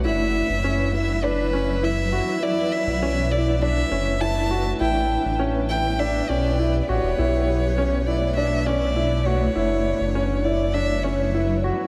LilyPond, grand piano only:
\new Staff \with { instrumentName = "Grand piano" } { \time 4/4 \key b \minor \tempo 4 = 101 e'4 cis'8 e'8 d'8 cis'8 e'8 fis'8 | e'4 cis'8 e'8 d'8 cis'8 e'8 fis'8 | e'4 cis'8 e'8 d'8 cis'8 e'8 fis'8 | e'4 cis'8 e'8 d'8 cis'8 e'8 fis'8 |
e'4 cis'8 e'8 d'8 cis'8 e'8 fis'8 | }